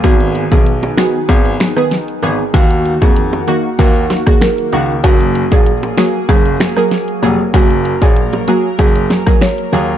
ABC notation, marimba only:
X:1
M:4/4
L:1/16
Q:1/4=96
K:F#
V:1 name="Marimba"
F2 z G z2 F z G z2 B z4 | F2 z G z2 F z A z2 G A3 z | F2 z G z2 F z G z2 A z4 | F2 z G z2 F z G z2 A c3 z |]